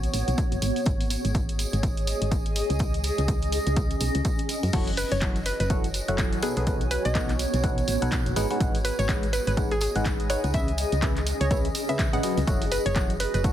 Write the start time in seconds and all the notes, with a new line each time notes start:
Already playing: B3 F#4 C#5
0.03 closed hi-hat, tambourine
0.14 A1, open hi-hat, tambourine
0.28 B1, closed hi-hat, tambourine
0.38 kick, closed hi-hat, tambourine
0.52 F#1, closed hi-hat, tambourine
0.62 G#1 G#4, open hi-hat, tambourine
0.76 open hi-hat, tambourine
0.86 G#1, kick, closed hi-hat, tambourine
0.90 D#5
1.00 open hi-hat, tambourine
1.10 open hi-hat, tambourine
1.25 G#1, closed hi-hat, tambourine
1.35 kick, closed hi-hat, tambourine
1.49 closed hi-hat, tambourine
1.59 G#5, open hi-hat, tambourine
1.73 G#1, closed hi-hat, tambourine
1.83 kick, closed hi-hat, tambourine
1.97 closed hi-hat, tambourine
2.07 open hi-hat, tambourine
2.21 G#1, closed hi-hat, tambourine
2.31 kick, closed hi-hat, tambourine
2.45 closed hi-hat, tambourine
2.56 open hi-hat, tambourine
2.70 C#2, closed hi-hat, tambourine
2.79 C#4, kick, closed hi-hat, tambourine
2.94 closed hi-hat, tambourine
3.04 open hi-hat, tambourine
3.18 C#2, closed hi-hat, tambourine
3.28 kick, closed hi-hat, tambourine
3.42 closed hi-hat, tambourine
3.52 open hi-hat, tambourine
3.67 C#2, closed hi-hat, tambourine
3.76 kick, closed hi-hat, tambourine
3.91 closed hi-hat, tambourine
4.00 B1, open hi-hat, tambourine
4.15 C#2, closed hi-hat, tambourine
4.25 kick, closed hi-hat, tambourine
4.38 closed hi-hat, tambourine
4.49 open hi-hat, tambourine
4.63 F#2, open hi-hat, tambourine
4.73 F#1 F#3 E4 F#4 A4 C#5 F#5, kick, closed hi-hat, crash, tambourine
4.87 open hi-hat, tambourine
4.97 B4, open hi-hat, tambourine
5.12 F#1 C#5, closed hi-hat, tambourine
5.18 C#5, closed hi-hat, tambourine
5.22 F#3 E4 A4 C#5 F#5, kick, clap
5.36 closed hi-hat, tambourine
5.46 B4, open hi-hat, tambourine
5.50 G#5
5.60 F#1 B4, closed hi-hat, tambourine
5.70 F#3 E4 A4 C#5 F#5, kick, closed hi-hat, tambourine
5.84 closed hi-hat, tambourine
5.94 open hi-hat, tambourine
6.08 F#1 F#3 E4 A4 C#5 F#5, closed hi-hat, tambourine
6.18 kick, clap, closed hi-hat, tambourine
6.33 closed hi-hat, tambourine
6.42 B2 B3 D#4 G#4 A4 B4 F#5, open hi-hat, tambourine
6.57 B1 B2 D#4 G#4 A4 B4 F#5, closed hi-hat, tambourine
6.67 B2 D#4 A4 B4 F#5, kick, closed hi-hat, tambourine
6.81 closed hi-hat, tambourine
6.91 B4, open hi-hat, tambourine
7.05 B1 D#5, closed hi-hat, tambourine
7.15 B2 D#4 A4 B4 F#5, kick, clap, closed hi-hat, tambourine
7.29 clap, closed hi-hat, tambourine
7.39 open hi-hat, tambourine
7.54 B1, closed hi-hat, tambourine
7.64 B2 D#4 A4 B4 F#5, kick, closed hi-hat, tambourine
7.78 closed hi-hat, tambourine
7.88 A1, open hi-hat, tambourine
8.02 B1 B2 D#4 A4 B4 F#5, closed hi-hat, tambourine
8.12 kick, clap, closed hi-hat, tambourine
8.26 F#1, closed hi-hat, tambourine
8.36 G#1 G#3 D#4 G#4 B4 F#5, open hi-hat, tambourine
8.50 G#3 D#4 G#4 B4 F#5, open hi-hat, tambourine
8.60 G#1 G#3 D#4 G#4 B4 F#5, kick, closed hi-hat, tambourine
8.75 open hi-hat, tambourine
8.85 B4, open hi-hat, tambourine
8.99 G#1 C#5, closed hi-hat, tambourine
9.03 D#5
9.09 G#3 D#4 G#4 B4 F#5, kick, clap, closed hi-hat
9.23 closed hi-hat, tambourine
9.33 B4 G#5, open hi-hat, tambourine
9.47 G#1 B4, closed hi-hat, tambourine
9.57 G#3 D#4 G#4 B4 F#5, kick, closed hi-hat, tambourine
9.71 G#4, closed hi-hat, tambourine
9.81 G#4, open hi-hat, tambourine
9.96 G#1 G#3 D#4 G#4 B4 F#5, closed hi-hat, tambourine
10.06 kick, clap, closed hi-hat, tambourine
10.20 closed hi-hat, tambourine
10.30 D#4 G#4 B4 C#5 F#5, open hi-hat, tambourine
10.44 C#2 D#4 G#4 B4 F#5, closed hi-hat, tambourine
10.54 C#3 C#4 G#4 B4 E5, kick, closed hi-hat, tambourine
10.68 closed hi-hat, tambourine
10.78 open hi-hat, tambourine
10.92 C#2, closed hi-hat, tambourine
11.02 C#3 C#4 G#4 B4 E5, kick, clap, closed hi-hat, tambourine
11.16 clap, closed hi-hat, tambourine
11.27 open hi-hat, tambourine
11.41 C#2 C#5, closed hi-hat, tambourine
11.51 C#3 C#4 G#4 B4 C#5 E5, kick, closed hi-hat, tambourine
11.65 closed hi-hat, tambourine
11.75 open hi-hat, tambourine
11.89 C#3 C#4 G#4 B4 D#5 E5, closed hi-hat, tambourine
11.99 kick, clap, closed hi-hat, tambourine
12.13 G#1 C#3 C#4 G#4 B4 D#5 F#5, closed hi-hat, tambourine
12.23 F#3 C#4 G#4 B4 D#5, open hi-hat, tambourine
12.37 C#2, open hi-hat, tambourine
12.47 F#1 F#3 E4 F#4 A4 C#5 F#5, kick, closed hi-hat, tambourine
12.62 open hi-hat, tambourine
12.72 B4, open hi-hat, tambourine
12.86 F#1 C#5, closed hi-hat, tambourine
12.96 F#3 E4 A4 C#5 F#5, kick, clap, closed hi-hat, tambourine
13.01 C#5
13.10 closed hi-hat, tambourine
13.20 B4, open hi-hat, tambourine
13.24 G#5
13.34 F#1 B4, closed hi-hat, tambourine
13.44 F#3 E4 A4 C#5 F#5, kick, closed hi-hat, tambourine